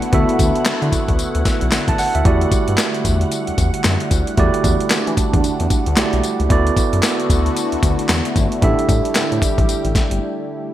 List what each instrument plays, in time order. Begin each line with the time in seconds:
Already playing: analog synth pad D3 A3 B3 E4 F#5, tine electric piano E4 F#4 A4 D5
0.02 closed hi-hat
0.12 analog synth bass D2, tine electric piano B3 E4 F#4 A4 E5, kick, closed hi-hat
0.29 closed hi-hat
0.39 analog synth bass D2, kick, closed hi-hat, tambourine
0.55 closed hi-hat
0.66 analog synth bass D3, snare, clap, closed hi-hat, tambourine
0.82 analog synth bass D3, closed hi-hat
0.92 kick, closed hi-hat, tambourine
1.08 analog synth bass D2, kick, closed hi-hat
1.19 analog synth bass D2, closed hi-hat, tambourine
1.35 analog synth bass D2, closed hi-hat
1.45 kick, snare, closed hi-hat, tambourine
1.61 analog synth bass B1, closed hi-hat
1.72 snare, clap, closed hi-hat, tambourine
1.88 analog synth bass A1, tine electric piano A5, kick, closed hi-hat
1.98 tine electric piano F#5, open hi-hat, tambourine
2.15 analog synth bass D2, tine electric piano E5, closed hi-hat
2.24 analog synth bass E2, analog synth pad G3, tine electric piano A3 E4 F#4 G4 D5, kick, closed hi-hat
2.41 closed hi-hat
2.52 kick, closed hi-hat, tambourine
2.68 analog synth bass G2, closed hi-hat
2.78 snare, clap, closed hi-hat, tambourine
2.94 closed hi-hat
3.05 analog synth bass E2, kick, closed hi-hat, tambourine
3.21 closed hi-hat
3.32 closed hi-hat, tambourine
3.47 analog synth bass E2, closed hi-hat
3.58 analog synth bass E2, kick, closed hi-hat, tambourine
3.74 closed hi-hat
3.84 analog synth bass F#2, snare, clap, closed hi-hat, tambourine
4.00 closed hi-hat
4.11 analog synth bass D2, kick, closed hi-hat, tambourine
4.27 closed hi-hat
4.37 analog synth bass E2, tine electric piano A3 E4 F#4 G4 D5, analog synth pad D4, kick, closed hi-hat
4.54 closed hi-hat
4.64 analog synth bass E2, kick, closed hi-hat, tambourine
4.80 closed hi-hat
4.90 analog synth bass E3, snare, clap, closed hi-hat, tambourine
5.07 analog synth bass E3, closed hi-hat
5.17 kick, closed hi-hat, tambourine
5.33 analog synth bass E2, kick, closed hi-hat
5.44 analog synth bass E2, closed hi-hat, tambourine
5.60 analog synth bass E2, closed hi-hat
5.70 kick, closed hi-hat, tambourine
5.86 analog synth bass D2, closed hi-hat
5.97 analog synth bass B1, tine electric piano A3 E4 F#4 G4 D5, snare, clap, closed hi-hat, tambourine
6.13 analog synth bass B1, closed hi-hat
6.23 closed hi-hat, tambourine
6.40 analog synth bass C#2, closed hi-hat
6.49 analog synth bass D2, analog synth pad D3 A3 B3 E4 F#4, tine electric piano B3 E4 F#4 A4 D5, kick, closed hi-hat
6.67 closed hi-hat
6.77 kick, closed hi-hat, tambourine
6.93 analog synth bass F#2, closed hi-hat
7.03 snare, clap, closed hi-hat, tambourine
7.20 closed hi-hat
7.30 analog synth bass D2, kick, closed hi-hat, tambourine
7.46 closed hi-hat
7.56 closed hi-hat, tambourine
7.72 analog synth bass D2, closed hi-hat
7.83 analog synth bass D2, kick, closed hi-hat, tambourine
7.99 closed hi-hat
8.09 analog synth bass E2, snare, clap, closed hi-hat, tambourine
8.25 closed hi-hat
8.36 analog synth bass G1, kick, closed hi-hat, tambourine
8.52 closed hi-hat
8.62 analog synth bass A1, analog synth pad G3 G4, tine electric piano D4 E4 G4 A4 E5, kick, closed hi-hat
8.79 closed hi-hat
8.89 analog synth bass A1, kick, closed hi-hat, tambourine
9.05 closed hi-hat
9.15 analog synth bass A2, snare, clap, closed hi-hat, tambourine
9.32 analog synth bass A2, closed hi-hat
9.42 kick, closed hi-hat, tambourine
9.58 analog synth bass A1, kick, closed hi-hat
9.69 closed hi-hat, tambourine
9.85 analog synth bass A1, closed hi-hat
9.95 kick, snare, closed hi-hat, tambourine
10.11 analog synth bass G1, closed hi-hat